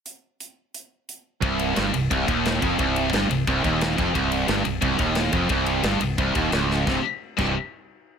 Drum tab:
CC |--------|--------|--------|--------|
RD |--------|xxxxxxxx|xxxxxxxx|xxxxxxxx|
HH |x-x-x-x-|--------|--------|--------|
SD |--------|--o---o-|--o---o-|--o---o-|
BD |--------|o---oo-o|o---oo-o|o---oo-o|

CC |--------|---x----|
RD |xxxxxxx-|--------|
HH |--------|--------|
SD |--o---oo|o-------|
BD |o---oo--|o--o----|